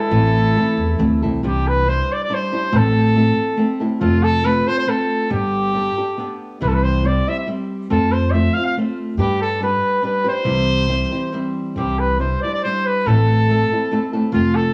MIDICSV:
0, 0, Header, 1, 5, 480
1, 0, Start_track
1, 0, Key_signature, 0, "major"
1, 0, Tempo, 433213
1, 124, Time_signature, 3, 2, 24, 8
1, 8764, Tempo, 428266
1, 16414, End_track
2, 0, Start_track
2, 0, Title_t, "Trumpet"
2, 0, Program_c, 0, 56
2, 0, Note_on_c, 0, 69, 95
2, 1355, Note_off_c, 0, 69, 0
2, 1621, Note_on_c, 0, 67, 71
2, 1857, Note_on_c, 0, 71, 81
2, 1874, Note_off_c, 0, 67, 0
2, 2091, Note_on_c, 0, 72, 76
2, 2108, Note_off_c, 0, 71, 0
2, 2351, Note_on_c, 0, 74, 72
2, 2368, Note_off_c, 0, 72, 0
2, 2450, Note_off_c, 0, 74, 0
2, 2479, Note_on_c, 0, 74, 78
2, 2595, Note_on_c, 0, 72, 81
2, 2611, Note_off_c, 0, 74, 0
2, 3064, Note_on_c, 0, 69, 88
2, 3080, Note_off_c, 0, 72, 0
2, 4241, Note_off_c, 0, 69, 0
2, 4444, Note_on_c, 0, 65, 80
2, 4692, Note_on_c, 0, 69, 100
2, 4708, Note_off_c, 0, 65, 0
2, 4934, Note_on_c, 0, 71, 84
2, 4951, Note_off_c, 0, 69, 0
2, 5180, Note_on_c, 0, 72, 96
2, 5196, Note_off_c, 0, 71, 0
2, 5290, Note_off_c, 0, 72, 0
2, 5301, Note_on_c, 0, 72, 84
2, 5426, Note_on_c, 0, 69, 71
2, 5442, Note_off_c, 0, 72, 0
2, 5892, Note_off_c, 0, 69, 0
2, 5909, Note_on_c, 0, 67, 84
2, 7066, Note_off_c, 0, 67, 0
2, 7344, Note_on_c, 0, 71, 71
2, 7401, Note_on_c, 0, 69, 55
2, 7417, Note_off_c, 0, 71, 0
2, 7467, Note_on_c, 0, 71, 69
2, 7483, Note_off_c, 0, 69, 0
2, 7573, Note_on_c, 0, 72, 85
2, 7590, Note_off_c, 0, 71, 0
2, 7824, Note_on_c, 0, 74, 70
2, 7840, Note_off_c, 0, 72, 0
2, 8074, Note_on_c, 0, 76, 90
2, 8090, Note_off_c, 0, 74, 0
2, 8180, Note_off_c, 0, 76, 0
2, 8186, Note_on_c, 0, 76, 67
2, 8291, Note_off_c, 0, 76, 0
2, 8767, Note_on_c, 0, 69, 80
2, 9002, Note_on_c, 0, 72, 70
2, 9019, Note_off_c, 0, 69, 0
2, 9213, Note_on_c, 0, 76, 75
2, 9230, Note_off_c, 0, 72, 0
2, 9465, Note_on_c, 0, 77, 81
2, 9482, Note_off_c, 0, 76, 0
2, 9591, Note_off_c, 0, 77, 0
2, 9597, Note_on_c, 0, 77, 67
2, 9707, Note_off_c, 0, 77, 0
2, 10204, Note_on_c, 0, 67, 79
2, 10432, Note_off_c, 0, 67, 0
2, 10454, Note_on_c, 0, 69, 80
2, 10662, Note_off_c, 0, 69, 0
2, 10693, Note_on_c, 0, 71, 70
2, 11125, Note_off_c, 0, 71, 0
2, 11171, Note_on_c, 0, 71, 74
2, 11391, Note_off_c, 0, 71, 0
2, 11434, Note_on_c, 0, 72, 109
2, 12826, Note_off_c, 0, 72, 0
2, 13104, Note_on_c, 0, 67, 65
2, 13343, Note_on_c, 0, 71, 73
2, 13359, Note_off_c, 0, 67, 0
2, 13564, Note_off_c, 0, 71, 0
2, 13571, Note_on_c, 0, 72, 58
2, 13809, Note_off_c, 0, 72, 0
2, 13823, Note_on_c, 0, 74, 72
2, 13934, Note_off_c, 0, 74, 0
2, 13950, Note_on_c, 0, 74, 76
2, 14051, Note_off_c, 0, 74, 0
2, 14058, Note_on_c, 0, 72, 75
2, 14310, Note_on_c, 0, 71, 80
2, 14327, Note_off_c, 0, 72, 0
2, 14548, Note_on_c, 0, 69, 87
2, 14565, Note_off_c, 0, 71, 0
2, 15744, Note_off_c, 0, 69, 0
2, 15970, Note_on_c, 0, 65, 81
2, 16208, Note_on_c, 0, 69, 87
2, 16224, Note_off_c, 0, 65, 0
2, 16414, Note_off_c, 0, 69, 0
2, 16414, End_track
3, 0, Start_track
3, 0, Title_t, "Trumpet"
3, 0, Program_c, 1, 56
3, 0, Note_on_c, 1, 64, 62
3, 1375, Note_off_c, 1, 64, 0
3, 16414, End_track
4, 0, Start_track
4, 0, Title_t, "Nylon-string guitar"
4, 0, Program_c, 2, 24
4, 0, Note_on_c, 2, 56, 65
4, 0, Note_on_c, 2, 62, 51
4, 0, Note_on_c, 2, 64, 58
4, 0, Note_on_c, 2, 71, 63
4, 120, Note_on_c, 2, 45, 70
4, 122, Note_off_c, 2, 56, 0
4, 124, Note_off_c, 2, 64, 0
4, 125, Note_off_c, 2, 62, 0
4, 125, Note_on_c, 2, 52, 71
4, 127, Note_on_c, 2, 57, 72
4, 128, Note_on_c, 2, 64, 70
4, 129, Note_on_c, 2, 60, 58
4, 134, Note_off_c, 2, 71, 0
4, 138, Note_on_c, 2, 69, 72
4, 605, Note_off_c, 2, 45, 0
4, 608, Note_off_c, 2, 57, 0
4, 614, Note_off_c, 2, 69, 0
4, 619, Note_on_c, 2, 57, 48
4, 624, Note_off_c, 2, 60, 0
4, 627, Note_off_c, 2, 64, 0
4, 628, Note_on_c, 2, 60, 48
4, 631, Note_on_c, 2, 64, 58
4, 635, Note_on_c, 2, 69, 72
4, 1076, Note_off_c, 2, 57, 0
4, 1088, Note_off_c, 2, 69, 0
4, 1089, Note_on_c, 2, 57, 54
4, 1091, Note_off_c, 2, 60, 0
4, 1095, Note_on_c, 2, 60, 61
4, 1101, Note_off_c, 2, 64, 0
4, 1101, Note_on_c, 2, 69, 60
4, 1106, Note_on_c, 2, 64, 69
4, 1342, Note_off_c, 2, 69, 0
4, 1349, Note_off_c, 2, 57, 0
4, 1352, Note_off_c, 2, 60, 0
4, 1352, Note_off_c, 2, 64, 0
4, 1355, Note_on_c, 2, 69, 53
4, 1365, Note_on_c, 2, 64, 56
4, 1372, Note_on_c, 2, 60, 47
4, 1375, Note_on_c, 2, 57, 43
4, 1586, Note_off_c, 2, 64, 0
4, 1587, Note_off_c, 2, 69, 0
4, 1589, Note_off_c, 2, 52, 0
4, 1589, Note_on_c, 2, 48, 48
4, 1590, Note_off_c, 2, 57, 0
4, 1593, Note_off_c, 2, 60, 0
4, 1593, Note_on_c, 2, 52, 66
4, 1594, Note_on_c, 2, 55, 64
4, 1598, Note_on_c, 2, 62, 67
4, 1599, Note_on_c, 2, 64, 51
4, 1599, Note_on_c, 2, 72, 62
4, 2052, Note_off_c, 2, 55, 0
4, 2056, Note_off_c, 2, 62, 0
4, 2065, Note_on_c, 2, 55, 43
4, 2070, Note_off_c, 2, 48, 0
4, 2070, Note_on_c, 2, 62, 44
4, 2074, Note_off_c, 2, 64, 0
4, 2078, Note_on_c, 2, 64, 55
4, 2079, Note_off_c, 2, 72, 0
4, 2083, Note_on_c, 2, 72, 53
4, 2103, Note_off_c, 2, 52, 0
4, 2526, Note_off_c, 2, 55, 0
4, 2535, Note_off_c, 2, 62, 0
4, 2535, Note_off_c, 2, 64, 0
4, 2539, Note_on_c, 2, 55, 44
4, 2547, Note_off_c, 2, 72, 0
4, 2548, Note_on_c, 2, 62, 55
4, 2549, Note_on_c, 2, 64, 55
4, 2551, Note_on_c, 2, 72, 62
4, 2784, Note_off_c, 2, 72, 0
4, 2787, Note_off_c, 2, 64, 0
4, 2791, Note_off_c, 2, 62, 0
4, 2794, Note_off_c, 2, 55, 0
4, 2797, Note_on_c, 2, 72, 51
4, 2800, Note_on_c, 2, 64, 45
4, 2804, Note_on_c, 2, 62, 48
4, 2806, Note_on_c, 2, 55, 37
4, 3009, Note_off_c, 2, 64, 0
4, 3009, Note_on_c, 2, 45, 52
4, 3014, Note_off_c, 2, 55, 0
4, 3019, Note_off_c, 2, 62, 0
4, 3019, Note_on_c, 2, 57, 64
4, 3020, Note_off_c, 2, 72, 0
4, 3022, Note_on_c, 2, 52, 59
4, 3023, Note_on_c, 2, 64, 66
4, 3024, Note_on_c, 2, 60, 68
4, 3024, Note_on_c, 2, 69, 78
4, 3491, Note_off_c, 2, 57, 0
4, 3492, Note_off_c, 2, 45, 0
4, 3495, Note_on_c, 2, 57, 58
4, 3497, Note_off_c, 2, 60, 0
4, 3498, Note_off_c, 2, 52, 0
4, 3499, Note_off_c, 2, 64, 0
4, 3501, Note_on_c, 2, 60, 60
4, 3510, Note_on_c, 2, 64, 58
4, 3511, Note_off_c, 2, 69, 0
4, 3516, Note_on_c, 2, 69, 69
4, 3950, Note_off_c, 2, 60, 0
4, 3952, Note_off_c, 2, 57, 0
4, 3956, Note_on_c, 2, 57, 66
4, 3959, Note_off_c, 2, 64, 0
4, 3963, Note_on_c, 2, 60, 65
4, 3972, Note_off_c, 2, 69, 0
4, 3972, Note_on_c, 2, 64, 64
4, 3976, Note_on_c, 2, 69, 69
4, 4197, Note_off_c, 2, 69, 0
4, 4207, Note_off_c, 2, 64, 0
4, 4210, Note_on_c, 2, 69, 52
4, 4212, Note_off_c, 2, 60, 0
4, 4213, Note_off_c, 2, 57, 0
4, 4220, Note_on_c, 2, 64, 52
4, 4225, Note_on_c, 2, 60, 48
4, 4226, Note_on_c, 2, 57, 42
4, 4432, Note_off_c, 2, 57, 0
4, 4434, Note_off_c, 2, 60, 0
4, 4437, Note_off_c, 2, 69, 0
4, 4439, Note_on_c, 2, 53, 71
4, 4444, Note_off_c, 2, 64, 0
4, 4446, Note_on_c, 2, 57, 72
4, 4447, Note_on_c, 2, 60, 64
4, 4448, Note_on_c, 2, 65, 75
4, 4450, Note_on_c, 2, 69, 64
4, 4903, Note_off_c, 2, 57, 0
4, 4903, Note_off_c, 2, 60, 0
4, 4908, Note_on_c, 2, 57, 50
4, 4909, Note_off_c, 2, 65, 0
4, 4917, Note_on_c, 2, 60, 51
4, 4919, Note_off_c, 2, 53, 0
4, 4919, Note_off_c, 2, 69, 0
4, 4922, Note_on_c, 2, 65, 53
4, 4924, Note_on_c, 2, 69, 55
4, 5153, Note_off_c, 2, 69, 0
4, 5162, Note_off_c, 2, 65, 0
4, 5165, Note_off_c, 2, 57, 0
4, 5167, Note_on_c, 2, 69, 43
4, 5169, Note_off_c, 2, 60, 0
4, 5175, Note_on_c, 2, 65, 31
4, 5188, Note_on_c, 2, 60, 31
4, 5386, Note_off_c, 2, 60, 0
4, 5386, Note_off_c, 2, 65, 0
4, 5392, Note_on_c, 2, 57, 57
4, 5398, Note_off_c, 2, 69, 0
4, 5399, Note_on_c, 2, 60, 52
4, 5400, Note_on_c, 2, 65, 63
4, 5409, Note_on_c, 2, 69, 66
4, 5866, Note_off_c, 2, 57, 0
4, 5870, Note_off_c, 2, 65, 0
4, 5870, Note_off_c, 2, 69, 0
4, 5871, Note_on_c, 2, 59, 67
4, 5873, Note_on_c, 2, 55, 51
4, 5875, Note_on_c, 2, 67, 68
4, 5877, Note_off_c, 2, 60, 0
4, 5881, Note_on_c, 2, 62, 60
4, 5883, Note_on_c, 2, 69, 77
4, 6346, Note_off_c, 2, 59, 0
4, 6353, Note_off_c, 2, 62, 0
4, 6360, Note_on_c, 2, 59, 45
4, 6361, Note_off_c, 2, 69, 0
4, 6367, Note_on_c, 2, 62, 50
4, 6373, Note_off_c, 2, 67, 0
4, 6377, Note_on_c, 2, 67, 47
4, 6385, Note_on_c, 2, 69, 49
4, 6418, Note_off_c, 2, 55, 0
4, 6608, Note_off_c, 2, 69, 0
4, 6611, Note_off_c, 2, 59, 0
4, 6613, Note_off_c, 2, 67, 0
4, 6615, Note_off_c, 2, 62, 0
4, 6621, Note_on_c, 2, 69, 47
4, 6627, Note_on_c, 2, 67, 42
4, 6638, Note_on_c, 2, 62, 30
4, 6839, Note_off_c, 2, 62, 0
4, 6844, Note_on_c, 2, 59, 54
4, 6848, Note_off_c, 2, 69, 0
4, 6850, Note_off_c, 2, 67, 0
4, 6852, Note_on_c, 2, 62, 57
4, 6863, Note_on_c, 2, 67, 58
4, 6867, Note_on_c, 2, 69, 61
4, 7319, Note_off_c, 2, 59, 0
4, 7320, Note_on_c, 2, 48, 67
4, 7323, Note_on_c, 2, 55, 51
4, 7325, Note_off_c, 2, 62, 0
4, 7326, Note_on_c, 2, 52, 69
4, 7327, Note_off_c, 2, 69, 0
4, 7328, Note_off_c, 2, 67, 0
4, 7330, Note_on_c, 2, 60, 59
4, 7331, Note_on_c, 2, 72, 75
4, 7333, Note_on_c, 2, 64, 78
4, 7780, Note_off_c, 2, 55, 0
4, 7793, Note_off_c, 2, 64, 0
4, 7794, Note_on_c, 2, 55, 54
4, 7798, Note_off_c, 2, 60, 0
4, 7802, Note_on_c, 2, 60, 55
4, 7804, Note_off_c, 2, 48, 0
4, 7806, Note_off_c, 2, 72, 0
4, 7807, Note_off_c, 2, 52, 0
4, 7807, Note_on_c, 2, 64, 51
4, 7810, Note_on_c, 2, 72, 59
4, 8043, Note_off_c, 2, 72, 0
4, 8046, Note_off_c, 2, 64, 0
4, 8051, Note_off_c, 2, 55, 0
4, 8052, Note_off_c, 2, 60, 0
4, 8056, Note_on_c, 2, 72, 35
4, 8060, Note_on_c, 2, 64, 33
4, 8065, Note_on_c, 2, 60, 34
4, 8071, Note_on_c, 2, 55, 27
4, 8262, Note_off_c, 2, 55, 0
4, 8270, Note_off_c, 2, 60, 0
4, 8271, Note_off_c, 2, 64, 0
4, 8274, Note_off_c, 2, 72, 0
4, 8275, Note_on_c, 2, 55, 53
4, 8283, Note_on_c, 2, 60, 57
4, 8284, Note_on_c, 2, 64, 60
4, 8287, Note_on_c, 2, 72, 51
4, 8742, Note_off_c, 2, 60, 0
4, 8751, Note_off_c, 2, 55, 0
4, 8752, Note_off_c, 2, 72, 0
4, 8753, Note_on_c, 2, 53, 70
4, 8756, Note_off_c, 2, 64, 0
4, 8756, Note_on_c, 2, 57, 63
4, 8756, Note_on_c, 2, 60, 73
4, 8760, Note_on_c, 2, 65, 67
4, 8765, Note_on_c, 2, 72, 76
4, 9227, Note_off_c, 2, 57, 0
4, 9233, Note_off_c, 2, 60, 0
4, 9239, Note_off_c, 2, 53, 0
4, 9241, Note_on_c, 2, 57, 53
4, 9243, Note_off_c, 2, 65, 0
4, 9245, Note_off_c, 2, 72, 0
4, 9247, Note_on_c, 2, 60, 47
4, 9256, Note_on_c, 2, 65, 48
4, 9262, Note_on_c, 2, 72, 59
4, 9480, Note_off_c, 2, 72, 0
4, 9492, Note_off_c, 2, 65, 0
4, 9493, Note_off_c, 2, 57, 0
4, 9493, Note_on_c, 2, 72, 37
4, 9496, Note_off_c, 2, 60, 0
4, 9505, Note_on_c, 2, 65, 35
4, 9513, Note_on_c, 2, 60, 35
4, 9721, Note_off_c, 2, 60, 0
4, 9722, Note_off_c, 2, 72, 0
4, 9728, Note_off_c, 2, 65, 0
4, 9728, Note_on_c, 2, 57, 60
4, 9734, Note_on_c, 2, 60, 55
4, 9741, Note_on_c, 2, 65, 53
4, 9746, Note_on_c, 2, 72, 72
4, 10185, Note_off_c, 2, 57, 0
4, 10190, Note_off_c, 2, 60, 0
4, 10190, Note_on_c, 2, 55, 66
4, 10193, Note_off_c, 2, 65, 0
4, 10195, Note_on_c, 2, 62, 76
4, 10198, Note_on_c, 2, 67, 70
4, 10202, Note_off_c, 2, 72, 0
4, 10207, Note_on_c, 2, 71, 70
4, 10665, Note_off_c, 2, 62, 0
4, 10671, Note_off_c, 2, 55, 0
4, 10675, Note_off_c, 2, 71, 0
4, 10675, Note_on_c, 2, 55, 53
4, 10679, Note_on_c, 2, 62, 47
4, 10688, Note_off_c, 2, 67, 0
4, 10689, Note_on_c, 2, 71, 55
4, 10692, Note_on_c, 2, 67, 51
4, 11126, Note_off_c, 2, 55, 0
4, 11128, Note_off_c, 2, 62, 0
4, 11131, Note_on_c, 2, 55, 60
4, 11139, Note_off_c, 2, 71, 0
4, 11140, Note_off_c, 2, 67, 0
4, 11141, Note_on_c, 2, 62, 58
4, 11145, Note_on_c, 2, 67, 55
4, 11153, Note_on_c, 2, 71, 58
4, 11367, Note_off_c, 2, 71, 0
4, 11376, Note_off_c, 2, 67, 0
4, 11381, Note_on_c, 2, 71, 56
4, 11388, Note_off_c, 2, 55, 0
4, 11388, Note_off_c, 2, 62, 0
4, 11390, Note_on_c, 2, 67, 51
4, 11401, Note_on_c, 2, 62, 38
4, 11608, Note_off_c, 2, 62, 0
4, 11611, Note_on_c, 2, 48, 77
4, 11612, Note_on_c, 2, 55, 72
4, 11612, Note_on_c, 2, 60, 52
4, 11613, Note_on_c, 2, 52, 57
4, 11615, Note_off_c, 2, 71, 0
4, 11617, Note_off_c, 2, 67, 0
4, 11620, Note_on_c, 2, 72, 66
4, 11621, Note_on_c, 2, 64, 70
4, 12087, Note_off_c, 2, 55, 0
4, 12092, Note_on_c, 2, 55, 51
4, 12098, Note_off_c, 2, 48, 0
4, 12099, Note_off_c, 2, 60, 0
4, 12103, Note_on_c, 2, 60, 46
4, 12105, Note_off_c, 2, 64, 0
4, 12109, Note_off_c, 2, 72, 0
4, 12110, Note_on_c, 2, 64, 55
4, 12113, Note_on_c, 2, 72, 58
4, 12340, Note_off_c, 2, 72, 0
4, 12348, Note_off_c, 2, 64, 0
4, 12349, Note_off_c, 2, 60, 0
4, 12352, Note_off_c, 2, 55, 0
4, 12353, Note_on_c, 2, 72, 40
4, 12362, Note_on_c, 2, 64, 40
4, 12363, Note_on_c, 2, 60, 38
4, 12375, Note_on_c, 2, 55, 35
4, 12577, Note_off_c, 2, 55, 0
4, 12581, Note_off_c, 2, 60, 0
4, 12588, Note_off_c, 2, 72, 0
4, 12591, Note_on_c, 2, 55, 62
4, 12595, Note_off_c, 2, 64, 0
4, 12595, Note_on_c, 2, 60, 60
4, 12602, Note_on_c, 2, 72, 63
4, 12606, Note_on_c, 2, 64, 63
4, 13080, Note_off_c, 2, 55, 0
4, 13087, Note_off_c, 2, 52, 0
4, 13089, Note_on_c, 2, 48, 49
4, 13090, Note_off_c, 2, 60, 0
4, 13091, Note_on_c, 2, 52, 45
4, 13092, Note_off_c, 2, 64, 0
4, 13094, Note_off_c, 2, 72, 0
4, 13094, Note_on_c, 2, 55, 66
4, 13095, Note_on_c, 2, 62, 57
4, 13096, Note_on_c, 2, 64, 73
4, 13099, Note_on_c, 2, 72, 65
4, 13554, Note_off_c, 2, 55, 0
4, 13559, Note_off_c, 2, 62, 0
4, 13568, Note_on_c, 2, 55, 51
4, 13572, Note_on_c, 2, 62, 45
4, 13577, Note_off_c, 2, 48, 0
4, 13577, Note_off_c, 2, 64, 0
4, 13581, Note_off_c, 2, 72, 0
4, 13582, Note_on_c, 2, 64, 51
4, 13585, Note_on_c, 2, 72, 48
4, 13606, Note_off_c, 2, 52, 0
4, 13820, Note_off_c, 2, 72, 0
4, 13826, Note_off_c, 2, 55, 0
4, 13828, Note_off_c, 2, 62, 0
4, 13828, Note_off_c, 2, 64, 0
4, 13834, Note_on_c, 2, 72, 35
4, 13840, Note_on_c, 2, 62, 28
4, 13842, Note_on_c, 2, 64, 33
4, 13855, Note_on_c, 2, 55, 29
4, 14061, Note_off_c, 2, 55, 0
4, 14063, Note_off_c, 2, 72, 0
4, 14067, Note_off_c, 2, 62, 0
4, 14067, Note_off_c, 2, 64, 0
4, 14074, Note_on_c, 2, 55, 59
4, 14084, Note_on_c, 2, 62, 59
4, 14091, Note_on_c, 2, 64, 60
4, 14094, Note_on_c, 2, 72, 56
4, 14544, Note_off_c, 2, 64, 0
4, 14550, Note_off_c, 2, 55, 0
4, 14552, Note_on_c, 2, 45, 60
4, 14554, Note_off_c, 2, 62, 0
4, 14554, Note_on_c, 2, 52, 63
4, 14558, Note_off_c, 2, 72, 0
4, 14558, Note_on_c, 2, 64, 71
4, 14559, Note_on_c, 2, 60, 59
4, 14560, Note_on_c, 2, 57, 64
4, 14563, Note_on_c, 2, 69, 67
4, 15014, Note_off_c, 2, 57, 0
4, 15015, Note_off_c, 2, 64, 0
4, 15018, Note_on_c, 2, 57, 50
4, 15026, Note_off_c, 2, 45, 0
4, 15027, Note_off_c, 2, 52, 0
4, 15028, Note_on_c, 2, 64, 50
4, 15029, Note_off_c, 2, 60, 0
4, 15033, Note_off_c, 2, 69, 0
4, 15033, Note_on_c, 2, 60, 49
4, 15037, Note_on_c, 2, 69, 56
4, 15258, Note_off_c, 2, 69, 0
4, 15266, Note_off_c, 2, 60, 0
4, 15269, Note_off_c, 2, 57, 0
4, 15269, Note_off_c, 2, 64, 0
4, 15271, Note_on_c, 2, 69, 39
4, 15279, Note_on_c, 2, 60, 39
4, 15282, Note_on_c, 2, 64, 38
4, 15288, Note_on_c, 2, 57, 36
4, 15480, Note_off_c, 2, 57, 0
4, 15487, Note_off_c, 2, 60, 0
4, 15493, Note_on_c, 2, 57, 68
4, 15496, Note_off_c, 2, 64, 0
4, 15496, Note_off_c, 2, 69, 0
4, 15500, Note_on_c, 2, 60, 60
4, 15509, Note_on_c, 2, 64, 67
4, 15510, Note_on_c, 2, 69, 69
4, 15724, Note_off_c, 2, 69, 0
4, 15730, Note_off_c, 2, 64, 0
4, 15737, Note_on_c, 2, 69, 62
4, 15739, Note_off_c, 2, 60, 0
4, 15740, Note_off_c, 2, 57, 0
4, 15743, Note_on_c, 2, 64, 51
4, 15752, Note_on_c, 2, 60, 48
4, 15755, Note_on_c, 2, 57, 43
4, 15956, Note_off_c, 2, 57, 0
4, 15957, Note_off_c, 2, 60, 0
4, 15961, Note_on_c, 2, 53, 66
4, 15963, Note_off_c, 2, 69, 0
4, 15966, Note_off_c, 2, 64, 0
4, 15969, Note_on_c, 2, 57, 70
4, 15970, Note_on_c, 2, 60, 65
4, 15971, Note_on_c, 2, 65, 81
4, 15976, Note_on_c, 2, 69, 69
4, 16414, Note_off_c, 2, 53, 0
4, 16414, Note_off_c, 2, 57, 0
4, 16414, Note_off_c, 2, 60, 0
4, 16414, Note_off_c, 2, 65, 0
4, 16414, Note_off_c, 2, 69, 0
4, 16414, End_track
5, 0, Start_track
5, 0, Title_t, "Upright bass"
5, 0, Program_c, 3, 32
5, 125, Note_on_c, 3, 33, 77
5, 604, Note_off_c, 3, 33, 0
5, 856, Note_on_c, 3, 40, 71
5, 1070, Note_off_c, 3, 40, 0
5, 1103, Note_on_c, 3, 38, 91
5, 1331, Note_off_c, 3, 38, 0
5, 1360, Note_on_c, 3, 36, 57
5, 1566, Note_off_c, 3, 36, 0
5, 1584, Note_on_c, 3, 36, 71
5, 2210, Note_off_c, 3, 36, 0
5, 3020, Note_on_c, 3, 33, 93
5, 3638, Note_off_c, 3, 33, 0
5, 4445, Note_on_c, 3, 29, 82
5, 5066, Note_off_c, 3, 29, 0
5, 5881, Note_on_c, 3, 31, 74
5, 6506, Note_off_c, 3, 31, 0
5, 7333, Note_on_c, 3, 36, 85
5, 7956, Note_off_c, 3, 36, 0
5, 8761, Note_on_c, 3, 41, 76
5, 9385, Note_off_c, 3, 41, 0
5, 10181, Note_on_c, 3, 43, 71
5, 10804, Note_off_c, 3, 43, 0
5, 11611, Note_on_c, 3, 36, 68
5, 12246, Note_off_c, 3, 36, 0
5, 13077, Note_on_c, 3, 36, 75
5, 13713, Note_off_c, 3, 36, 0
5, 14537, Note_on_c, 3, 33, 82
5, 15158, Note_off_c, 3, 33, 0
5, 15949, Note_on_c, 3, 29, 81
5, 16414, Note_off_c, 3, 29, 0
5, 16414, End_track
0, 0, End_of_file